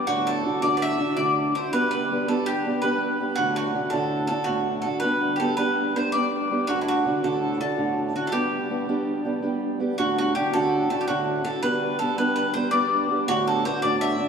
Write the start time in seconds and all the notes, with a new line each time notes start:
0.07 D2 A2 D3 D4 E4 F#4
0.27 A4
0.45 D3 D4 E4 F#4
0.62 D2 A2 D3 D4 E4 F#4 D5
0.77 D5
0.82 E5
0.99 D3 D4 E4 F#4
1.17 D2 A2 D3 D4 E4 F#4 D5
1.55 D3 D4 E4 F#4 C5
1.72 G3 B3 D4 G4 B4
1.91 B4
2.12 G3 B3 D4 G4
2.28 G3 B3 D4 G4 A4
2.46 G4
2.66 G3 B3 D4 G4
2.82 G3 B3 D4 G4 B4
3.20 G3 B3 D4 G4
3.36 D2 A2 D3 D4 E4 F#4
3.56 F#4
3.74 D3 D4 E4 F#4
3.90 D2 A2 D3 D4 E4 F#4 A4
4.27 D3 D4 A4
4.31 E4 F#4
4.44 D2 A2 D3 F#4
4.48 D4 E4 F#4
4.82 D3 D4 E4 A4
4.86 F#4
5.00 G3 B3 B4
5.04 D4 G4
5.36 G3 G4 A4
5.41 B3 D4 G4
5.57 G3 B3 D4 G4 B4
5.96 G3 B3 D4 G4 C5
6.12 G3 B3 D4 G4 D5
6.51 G3 B3 D4 G4
6.67 D2 A2 D3 D4 E4 F#4
6.81 E4
6.88 F#4
7.06 D3 D4 E4 F#4
7.23 D2 A2 D3 D4 E4 F#4 A4
7.60 D3 D4 E4 F#4 A4
7.77 D2 A2 D3 D4 E4 F#4
8.15 D3 D4 E4 F#4
8.27 A4
8.32 G3 B3 D4 G4
8.70 G3 B3 D4 G4
8.89 G3 B3 D4 G4
9.25 G3 B3 D4 G4
9.42 G3 B3 D4 G4
9.80 G3 B3 D4 G4
9.98 D2 A2 D3 D4 E4 F#4
10.18 F#4
10.35 D3 D4 E4 F#4 G4
10.53 D2 A2 D3 D4 E4 F#4 A4
10.90 D3 D4 E4 F#4 A4
11.01 G4
11.08 D2 A2 D3 D4 E4 F#4
11.44 D3 D4 E4 F#4 A4
11.62 G3 B3 D4 G4 B4
11.99 G3 B3 D4 G4 A4
12.18 G3 B3 D4 G4 B4
12.36 B4
12.54 G3 B3 D4 G4 C5
12.71 G3 B3 D4 G4 D5
13.09 G3 B3 D4 G4
13.28 D2 A2 D3 D4 E4 F#4
13.48 A4
13.65 D3 D4 E4 F#4 C5
13.82 D2 A2 D3 D4 E4 F#4 D5
14.01 E5
14.19 D3 D4 E4 F#4